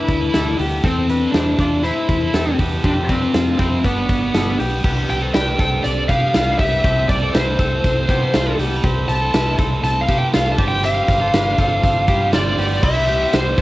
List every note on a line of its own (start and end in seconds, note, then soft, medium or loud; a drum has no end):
0.00 0.22 A3 medium
0.00 0.21 D4 medium
0.00 0.32 D4 medium
0.00 0.21 E4 medium
0.00 0.55 E4 medium
0.00 0.20 A4 medium
0.00 0.31 B4 medium
0.08 0.29 D2 medium
0.08 kick medium
0.08 closed hi-hat medium
0.20 0.32 A3 soft
0.20 0.32 D4 soft
0.20 0.33 E4 soft
0.20 0.33 A4 medium
0.33 0.55 D2 medium
0.33 0.57 A3 medium
0.33 0.58 D4 medium
0.33 0.60 D4 soft
0.33 0.59 E4 medium
0.33 0.59 A4 medium
0.33 snare medium
0.33 closed hi-hat loud
0.58 0.79 D2 medium
0.58 0.83 A3 medium
0.58 0.84 B3 medium
0.58 0.84 D4 medium
0.58 0.83 E4 medium
0.58 0.84 G4 medium
0.58 0.84 A4 medium
0.58 open hi-hat medium
0.83 1.25 E2 medium
0.83 1.21 E3 medium
0.83 1.21 A3 medium
0.83 1.21 C4 medium
0.83 1.32 C4 medium
0.83 1.10 C4 medium
0.83 1.20 E4 medium
0.83 1.09 A4 loud
0.83 1.19 A4 medium
0.83 kick loud
0.83 closed hi-hat medium
1.09 1.35 D4 medium
1.09 1.34 B4 medium
1.09 closed hi-hat medium
1.20 1.58 C4 soft
1.20 1.58 E4 soft
1.20 1.58 A4 soft
1.32 1.54 E2 medium
1.32 1.85 D4 medium
1.32 1.59 E4 medium
1.32 1.59 C5 medium
1.32 snare loud
1.32 closed hi-hat medium
1.58 1.90 E2 medium
1.58 2.21 A3 medium
1.58 2.22 C4 medium
1.58 2.21 E4 medium
1.58 1.85 F4 medium
1.58 2.19 A4 medium
1.58 1.85 D5 medium
1.58 kick medium
1.58 closed hi-hat medium
1.83 2.54 E4 medium
1.83 2.32 E4 medium
1.83 2.31 C5 medium
1.83 closed hi-hat medium
2.09 2.30 E2 medium
2.09 kick medium
2.09 closed hi-hat medium
2.21 2.33 C4 soft
2.21 2.33 E4 soft
2.21 2.34 A4 soft
2.33 2.54 E2 medium
2.33 2.57 A3 medium
2.33 2.58 C4 medium
2.33 2.60 C4 medium
2.33 2.59 E4 medium
2.33 2.59 A4 medium
2.33 snare medium
2.33 closed hi-hat medium
2.58 2.80 E2 medium
2.58 2.84 A3 medium
2.58 2.85 B3 medium
2.58 2.83 C4 medium
2.58 2.84 E4 medium
2.58 2.83 G4 medium
2.58 2.84 A4 medium
2.58 kick medium
2.58 open hi-hat medium
2.83 3.25 F2 medium
2.83 3.21 F3 medium
2.83 3.22 G3 medium
2.83 3.22 C4 medium
2.83 3.10 C4 medium
2.83 2.92 D4 medium
2.83 3.21 F4 medium
2.83 3.09 G4 medium
2.83 3.20 A4 medium
2.83 kick loud
2.83 closed hi-hat medium
3.09 3.58 C4 medium
3.09 3.35 D4 medium
3.09 3.34 B4 medium
3.09 kick medium
3.09 closed hi-hat medium
3.21 3.57 C4 soft
3.21 3.58 F4 soft
3.21 3.59 A4 soft
3.34 3.55 F2 medium
3.34 3.60 F4 medium
3.34 3.58 C5 medium
3.34 snare loud
3.34 closed hi-hat medium
3.57 3.80 F2 medium
3.57 3.82 G3 medium
3.57 3.83 C4 medium
3.57 3.85 C4 medium
3.57 3.85 E4 medium
3.57 3.84 F4 medium
3.57 3.84 A4 medium
3.57 3.84 C5 medium
3.57 kick medium
3.57 closed hi-hat medium
3.83 4.05 G1 medium
3.83 4.21 G3 medium
3.83 4.56 B3 medium
3.83 4.21 D4 medium
3.83 4.32 D4 medium
3.83 4.21 G4 medium
3.83 4.19 B4 medium
3.83 4.32 B4 medium
3.83 kick medium
3.83 closed hi-hat medium
4.09 4.30 G1 medium
4.09 kick medium
4.09 closed hi-hat medium
4.20 4.33 D4 soft
4.20 4.34 G4 medium
4.20 4.34 B4 medium
4.33 4.55 G1 medium
4.33 4.57 G3 medium
4.33 4.57 D4 medium
4.33 4.60 D4 soft
4.33 4.58 G4 medium
4.33 4.59 A4 medium
4.33 4.59 B4 medium
4.33 snare medium
4.33 closed hi-hat medium
4.58 4.80 B1 medium
4.58 4.83 G3 medium
4.58 4.84 B3 medium
4.58 4.84 D4 medium
4.58 4.84 G4 medium
4.58 4.83 G4 medium
4.58 4.84 B4 medium
4.58 open hi-hat medium
4.84 5.05 C2 medium
4.84 5.22 C3 medium
4.84 5.22 F3 medium
4.84 5.22 G3 medium
4.84 5.20 B3 medium
4.84 5.22 D4 medium
4.84 5.20 G4 medium
4.84 5.21 G4 medium
4.84 5.20 B4 medium
4.84 kick loud
4.84 crash medium
4.84 tambourine soft
5.10 5.30 C2 medium
5.10 5.17 G5 medium
5.10 closed hi-hat medium
5.21 5.48 G3 soft
5.21 5.35 C4 medium
5.21 5.47 D4 soft
5.21 5.46 G4 soft
5.21 5.34 A4 medium
5.21 5.45 B4 medium
5.34 5.55 C2 medium
5.34 5.60 D4 medium
5.34 5.60 B4 medium
5.34 5.81 G5 medium
5.34 snare loud
5.34 closed hi-hat medium
5.34 tambourine medium
5.46 6.08 G3 soft
5.46 6.08 D4 soft
5.46 6.10 G4 soft
5.46 6.09 B4 medium
5.59 5.80 C2 medium
5.59 6.07 C4 medium
5.59 6.07 A4 medium
5.59 kick medium
5.59 closed hi-hat medium
5.59 tambourine soft
5.84 6.05 C2 loud
5.84 6.07 D5 medium
5.84 closed hi-hat medium
5.84 tambourine soft
6.08 6.30 C3 medium
6.08 6.32 G3 medium
6.08 6.35 B3 medium
6.08 6.33 D4 medium
6.08 6.34 G4 medium
6.08 6.35 B4 medium
6.08 6.58 F5 medium
6.08 kick medium
6.08 closed hi-hat medium
6.08 tambourine soft
6.33 6.55 C2 loud
6.33 6.57 G3 medium
6.33 6.59 B3 medium
6.33 6.58 D4 medium
6.33 6.60 F4 medium
6.33 6.59 G4 medium
6.33 6.59 B4 medium
6.33 snare loud
6.33 closed hi-hat loud
6.33 tambourine medium
6.58 6.80 C2 medium
6.58 6.83 G3 medium
6.58 6.85 B3 medium
6.58 6.84 D4 medium
6.58 6.84 G4 medium
6.58 6.83 G4 medium
6.58 6.84 B4 medium
6.58 7.08 E5 medium
6.58 kick medium
6.58 open hi-hat medium
6.58 tambourine soft
6.83 7.05 C2 loud
6.83 7.21 C3 medium
6.83 7.21 E3 medium
6.83 7.21 G3 medium
6.83 7.21 C4 medium
6.83 7.20 C4 medium
6.83 7.20 E4 medium
6.83 7.20 G4 medium
6.83 7.19 A4 medium
6.83 kick loud
6.83 closed hi-hat medium
6.83 tambourine soft
7.09 7.30 C2 medium
7.09 7.35 D5 medium
7.09 kick medium
7.09 closed hi-hat medium
7.09 tambourine soft
7.20 7.47 G3 soft
7.20 7.46 C4 soft
7.20 7.35 C4 medium
7.20 7.45 E4 soft
7.20 7.44 A4 soft
7.20 7.34 A4 medium
7.34 7.55 C2 medium
7.34 7.60 E4 medium
7.34 7.59 B4 medium
7.34 8.55 C5 medium
7.34 snare loud
7.34 closed hi-hat medium
7.34 tambourine medium
7.46 8.06 G3 soft
7.46 8.08 C4 soft
7.46 8.09 E4 soft
7.46 8.10 A4 medium
7.59 7.80 C2 medium
7.59 8.07 C4 medium
7.59 8.06 A4 medium
7.59 kick medium
7.59 closed hi-hat medium
7.59 tambourine soft
7.84 8.05 C2 medium
7.84 kick medium
7.84 closed hi-hat medium
7.84 tambourine soft
8.07 8.29 C3 loud
8.07 8.31 G3 medium
8.07 8.35 B3 medium
8.07 8.32 C4 medium
8.07 8.33 E4 medium
8.07 8.34 G4 medium
8.07 8.34 A4 medium
8.07 kick medium
8.07 closed hi-hat medium
8.07 tambourine medium
8.33 8.55 C2 loud
8.33 8.57 G3 medium
8.33 8.60 A3 medium
8.33 8.57 C4 medium
8.33 8.58 E4 medium
8.33 8.59 F4 medium
8.33 8.59 A4 medium
8.33 snare loud
8.33 closed hi-hat loud
8.33 tambourine medium
8.58 8.79 C2 loud
8.58 8.83 G3 medium
8.58 8.85 B3 medium
8.58 8.83 C4 medium
8.58 8.83 E4 medium
8.58 8.83 G4 medium
8.58 8.83 A4 medium
8.58 open hi-hat medium
8.58 tambourine soft
8.76 8.84 B5 medium
8.83 9.04 C2 loud
8.83 9.21 C3 medium
8.83 9.21 F3 medium
8.83 9.21 C4 medium
8.83 9.20 C4 medium
8.83 9.20 E4 medium
8.83 9.19 G4 loud
8.83 9.19 A4 medium
8.83 10.64 C6 medium
8.83 kick loud
8.83 closed hi-hat medium
8.83 tambourine soft
9.08 9.29 C2 medium
9.08 9.55 A5 loud
9.08 closed hi-hat medium
9.08 tambourine soft
9.20 9.47 A3 soft
9.20 9.46 C4 soft
9.20 9.34 C4 soft
9.20 9.45 E4 medium
9.20 9.44 A4 medium
9.20 9.33 A4 medium
9.34 9.54 C2 loud
9.34 9.59 E4 medium
9.34 9.59 B4 medium
9.34 snare loud
9.34 closed hi-hat medium
9.34 tambourine medium
9.45 10.06 A3 soft
9.45 10.08 C4 soft
9.45 10.08 E4 soft
9.45 10.08 A4 medium
9.59 9.79 C2 medium
9.59 10.06 C4 medium
9.59 10.06 A4 medium
9.59 kick loud
9.59 closed hi-hat medium
9.59 tambourine soft
9.84 10.04 C2 loud
9.84 10.01 A5 loud
9.84 closed hi-hat medium
9.84 tambourine soft
10.01 10.18 F5 medium
10.07 10.29 C3 loud
10.07 10.31 A3 medium
10.07 10.34 B3 medium
10.07 10.32 C4 medium
10.07 10.33 E4 medium
10.07 10.34 G4 medium
10.07 10.34 A4 medium
10.07 kick medium
10.07 closed hi-hat medium
10.07 tambourine medium
10.18 10.23 G5 medium
10.32 10.54 C2 loud
10.32 10.57 A3 medium
10.32 10.59 A3 medium
10.32 10.58 C4 medium
10.32 10.59 E4 medium
10.32 10.59 F4 medium
10.32 10.59 A4 medium
10.32 10.51 F5 medium
10.32 snare loud
10.32 closed hi-hat loud
10.32 tambourine medium
10.52 10.57 A5 loud
10.57 10.99 G1 loud
10.57 10.81 G3 medium
10.57 10.84 C4 medium
10.57 10.82 D4 medium
10.57 10.83 F4 medium
10.57 10.83 G4 medium
10.57 10.83 C5 medium
10.57 12.38 D6 loud
10.57 kick loud
10.57 open hi-hat medium
10.57 tambourine soft
10.68 10.83 G5 loud
10.83 11.21 G3 medium
10.83 11.19 C4 medium
10.83 11.21 D4 medium
10.83 11.20 F4 medium
10.83 11.19 G4 loud
10.83 11.19 C5 medium
10.83 12.30 F5 medium
10.83 closed hi-hat loud
10.83 tambourine soft
11.08 11.29 G1 loud
11.08 kick medium
11.08 closed hi-hat medium
11.08 tambourine soft
11.20 11.34 C4 medium
11.20 11.47 D4 soft
11.20 11.46 F4 medium
11.20 11.33 A4 medium
11.20 11.44 C5 medium
11.33 11.54 G1 loud
11.33 11.59 D4 medium
11.33 11.59 B4 medium
11.33 snare loud
11.33 closed hi-hat medium
11.33 tambourine medium
11.45 12.07 D4 medium
11.45 12.08 F4 medium
11.45 12.09 C5 medium
11.58 11.79 G1 medium
11.58 12.06 C4 medium
11.58 12.06 A4 medium
11.58 kick medium
11.58 closed hi-hat medium
11.58 tambourine medium
11.83 12.04 G1 loud
11.83 kick medium
11.83 closed hi-hat medium
11.83 tambourine soft
12.07 12.35 G2 loud
12.07 12.31 G3 medium
12.07 12.34 B3 medium
12.07 12.32 D4 medium
12.07 12.33 F4 medium
12.07 12.33 G4 medium
12.07 12.34 C5 medium
12.07 kick medium
12.07 closed hi-hat medium
12.07 tambourine medium
12.32 12.54 G1 loud
12.32 12.56 G3 medium
12.32 12.59 C4 medium
12.32 12.57 D4 medium
12.32 12.58 F4 medium
12.32 12.59 C5 medium
12.32 12.84 D5 loud
12.32 12.80 C6 medium
12.32 snare loud
12.32 closed hi-hat loud
12.32 tambourine medium
12.57 12.79 G1 medium
12.57 12.82 G3 medium
12.57 12.84 B3 medium
12.57 12.83 D4 medium
12.57 12.84 F4 medium
12.57 12.83 G4 medium
12.57 12.83 C5 medium
12.57 open hi-hat medium
12.57 tambourine soft
12.83 13.24 C2 loud
12.83 13.20 C3 medium
12.83 13.21 E3 medium
12.83 13.21 G3 medium
12.83 13.08 G3 medium
12.83 13.20 C4 medium
12.83 13.08 E4 loud
12.83 13.19 E4 medium
12.83 13.21 C5 medium
12.83 13.35 E5 loud
12.83 13.62 C6 loud
12.83 kick loud
12.83 crash loud
12.83 tambourine soft
13.08 13.56 B3 medium
13.08 13.55 G4 medium
13.08 ride medium
13.08 tambourine soft
13.20 13.56 G3 soft
13.20 13.56 C4 soft
13.20 13.57 E4 medium
13.33 13.54 C2 loud
13.33 13.62 C5 medium
13.33 snare loud
13.33 ride medium
13.33 tambourine loud
13.57 13.62 B1 loud
13.57 13.62 G3 medium
13.57 13.62 B3 medium
13.57 13.62 C4 medium
13.57 13.62 E4 medium
13.57 kick medium
13.57 ride medium